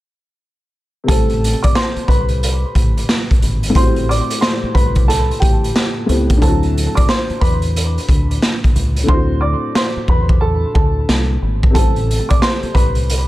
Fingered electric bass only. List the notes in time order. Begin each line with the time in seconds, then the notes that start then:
1.09 A1
1.96 muted fingered electric bass stroke
2.08 C2
2.75 A1
3.42 G#1
3.75 A1
4.63 muted fingered electric bass stroke
4.75 C2
5.42 A1
6.09 C#2
6.42 D2
7.30 muted fingered electric bass stroke
7.42 E2
8.09 D2
8.76 C#2
9.09 D2
9.96 muted fingered electric bass stroke
10.08 E2
10.75 D2
11.09 C2
11.42 G#1
11.75 A1
12.63 muted fingered electric bass stroke
12.75 C2